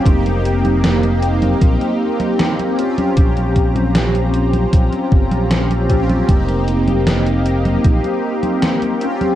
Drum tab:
HH |xxxxxxxxxx-xxxxx|xxxxxxxxxx-xxxxx|xxxxxxxxxx-xxxxx|
SD |----o-------o---|----o-------o---|----o-------o---|
CG |oo-ooo-ooo-ooo-o|oo-ooo-ooo-ooo-o|oo-ooo-ooo-ooo-o|
BD |o-------o-------|o-o-----o-o---o-|o-------o-------|